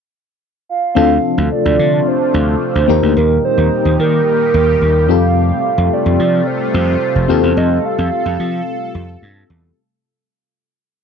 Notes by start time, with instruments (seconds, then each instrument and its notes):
0.69 soft synth lead F5
0.95 slap bass D2, analog synth pad C3 F3 A3 D4 F4, fm electric piano C4 D4 F4 A4
1.38 slap bass D2
1.52 soft synth lead D5
1.65 slap bass D2
1.79 slap bass D3
2.08 soft synth lead C5
2.34 slap bass D2
2.75 slap bass D2
2.88 slap bass D#2, analog synth pad A#2 D#3 G3 D#4 G4, fm electric piano A#3 D#4 G4 A#4
3.03 slap bass D2
3.17 slap bass D#2, soft synth lead A#4
3.45 soft synth lead C5
3.58 slap bass D#2
3.85 slap bass D#2
3.99 slap bass D#3, soft synth lead A#4
4.54 slap bass D#2
4.82 slap bass D#2
5.08 slap bass F2, analog synth pad C3 A3 F4, fm electric piano C4 F4 G4 A4, soft synth lead F5
5.78 slap bass F2
5.93 soft synth lead D5
6.06 slap bass F2
6.19 slap bass F3
6.47 soft synth lead C5
6.74 slap bass F2
7.15 slap bass F1
7.28 slap bass D#2, fm electric piano C4 F4 G4 A4, analog synth pad A4
7.43 slap bass E2
7.57 slap bass F2, soft synth lead D#5
7.85 soft synth lead F5
7.98 slap bass F2
8.26 slap bass F2
8.40 slap bass F3, soft synth lead F5
8.95 slap bass F2
9.22 slap bass G2
9.50 slap bass E2